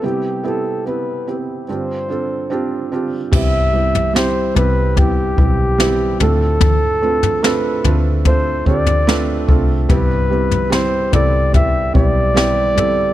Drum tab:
CC |----------------|x---------------|----------------|----------------|
SD |----------------|----o-------o---|----o-------o---|----o-------o---|
FT |----------------|o--o--o-o-----o-|o--o--o-o--o----|o--o--o-o-----o-|
BD |----------------|o-------o-o-----|o-------o-o---o-|o-------o-o-----|